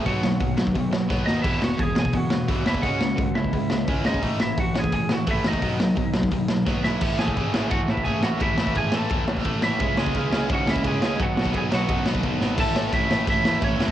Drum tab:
CC |----------------|x---------------|----------------|----------------|
RD |----------------|----------------|----------------|----------------|
HH |o---o---o-------|----o---o---o---|o---o---o---o---|o---o---o---o---|
SD |--o---o---o-o-o-|--o---o---o---o-|--o---o---o---o-|--o---o---o---o-|
BD |o---o--oo---o---|o---o--oo---o--o|o---o--oo---o--o|o---o--oo---o--o|

CC |----------------|x---------------|----------------|----------------|
RD |----------------|----x---x---x---|x---x---x---x---|x---x---x---x---|
HH |o---o---o-------|----------------|----------------|----------------|
SD |--o---o---o-o-o-|--o---o---o---o-|--o---o---o---o-|--o---o---o---o-|
BD |o---o--oo---o---|o--oo---o--oo---|o--oo---o--oo---|o--oo---o--oo---|

CC |----------------|x---x---x---x---|
RD |x---x---x---x---|----------------|
HH |----------------|----------------|
SD |--o---o---o---o-|--o---o---o---o-|
BD |o--oo---o--oo---|o---o---o---o--o|